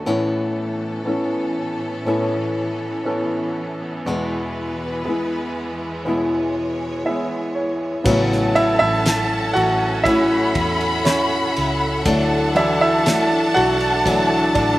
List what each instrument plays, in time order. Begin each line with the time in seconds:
0.05 nylon-string guitar A2 E3 B3 C#4 E4, string section A2 E3 B3 C#4 A4, grand piano A2
1.05 nylon-string guitar E3 B3 C#4 E4, grand piano B3 C#4 A4
2.05 nylon-string guitar A2 E3 B3 C#4 E4, grand piano B3 C#4 A4
3.06 nylon-string guitar E3 B3 C#4 E4, grand piano B3 C#4 A4
4.06 nylon-string guitar E2 B2 E3 G#3 B3 E4, grand piano E2, string section E2 G#3 B4
5.05 nylon-string guitar E3 G#3 B3, grand piano B3 E4 G#4
5.09 nylon-string guitar E4
6.05 nylon-string guitar E2 B2 E3 G#3 B3 E4, grand piano B3 E4 G#4, string section C#5
7.05 nylon-string guitar E3 G#3 B3 E4, grand piano B3 E4 G#4 E5
7.55 grand piano C#5
8.04 fingered electric bass A1, nylon-string guitar A2 F#3 A3, grand piano C#3 F#3 B3, string section C#4 A4 E5 F#5, violin section A5, kick, crash
8.09 nylon-string guitar C#4 E4
8.32 snare
8.55 grand piano E4 E5, ride
8.79 fingered electric bass A1, grand piano E4 E5
9.06 snare, ride
9.53 fingered electric bass A1, grand piano F#4 F#5, ride
10.04 nylon-string guitar A2 F#3 A3, grand piano E4 E5, violin section B5, kick, ride
10.09 nylon-string guitar C#4 E4
10.55 fingered electric bass E2, kick, ride
10.81 ride
11.04 grand piano C#4 C#5, snare, ride
11.56 fingered electric bass C#2, ride
12.04 fingered electric bass D2, nylon-string guitar D3 F#3 A3 D4 E4, string section D4, violin section A5, kick, ride
12.55 grand piano E3 F#3 D4 E4 E5, ride
12.81 grand piano E4 E5
13.06 nylon-string guitar F#3 A3 D4 E4, snare, ride
13.54 fingered electric bass B1, grand piano F#4 F#5, ride
13.80 ride
14.05 nylon-string guitar D3 F#3 A3, grand piano E3 F#3 D4, kick, ride
14.09 nylon-string guitar D4 E4
14.54 fingered electric bass A1, grand piano D4 D5, kick, ride